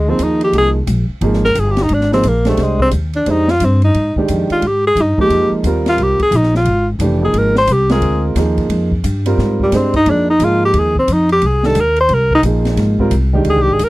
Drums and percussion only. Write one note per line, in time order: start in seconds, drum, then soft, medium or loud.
0.19 hi-hat pedal medium
0.19 ride medium
0.41 ride soft
0.53 ride medium
0.87 hi-hat pedal medium
0.87 ride medium
1.21 ride medium
1.33 snare soft
1.45 snare soft
1.55 hi-hat pedal medium
1.55 ride medium
1.77 snare medium
1.77 ride soft
1.89 ride medium
2.01 snare soft
2.12 snare soft
2.23 hi-hat pedal medium
2.23 ride medium
2.45 snare medium
2.45 ride soft
2.57 snare soft
2.57 ride medium
2.79 kick medium
2.91 hi-hat pedal medium
2.91 ride medium
3.13 ride soft
3.26 ride medium
3.48 snare medium
3.60 hi-hat pedal medium
3.60 ride medium
3.82 ride soft
3.94 ride medium
4.16 kick soft
4.28 hi-hat pedal medium
4.28 ride medium
4.50 ride soft
4.62 ride medium
4.97 hi-hat pedal medium
4.97 ride medium
5.18 kick medium
5.30 ride medium
5.64 hi-hat pedal medium
5.64 ride medium
5.86 snare medium
5.86 ride soft
5.98 ride medium
6.19 kick medium
6.19 ride soft
6.32 hi-hat pedal medium
6.32 ride medium
6.43 snare soft
6.55 snare soft
6.65 ride medium
7.00 hi-hat pedal medium
7.00 ride medium
7.34 ride medium
7.55 snare medium
7.67 hi-hat pedal medium
7.67 ride medium
7.89 snare medium
7.89 ride soft
8.02 ride medium
8.36 snare soft
8.36 hi-hat pedal medium
8.36 ride medium
8.58 kick medium
8.58 ride soft
8.70 ride medium
8.92 kick medium
9.04 hi-hat pedal medium
9.04 ride medium
9.26 ride medium
9.39 snare soft
9.60 kick medium
9.72 snare soft
9.72 hi-hat pedal medium
9.72 ride medium
9.94 kick medium
9.94 ride soft
10.06 ride medium
10.40 hi-hat pedal medium
10.40 ride medium
10.74 ride medium
10.95 kick medium
11.08 hi-hat pedal medium
11.08 ride medium
11.29 ride soft
11.42 ride medium
11.63 snare soft
11.75 hi-hat pedal medium
11.75 ride medium
11.96 ride soft
12.09 ride medium
12.31 kick medium
12.43 hi-hat pedal medium
12.43 ride medium
12.65 snare soft
12.65 ride soft
12.77 snare soft
12.77 ride medium
12.99 kick medium
13.11 hi-hat pedal medium
13.11 ride medium
13.45 ride medium
13.79 hi-hat pedal medium
13.79 ride medium